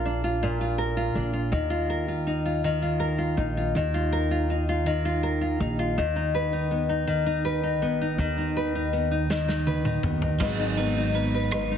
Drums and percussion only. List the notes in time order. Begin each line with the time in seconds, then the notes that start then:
9.30 snare
9.49 snare
9.67 high tom
9.85 mid tom
10.03 mid tom
10.22 floor tom
10.40 kick, crash
10.78 closed hi-hat
11.14 closed hi-hat
11.51 cross-stick, closed hi-hat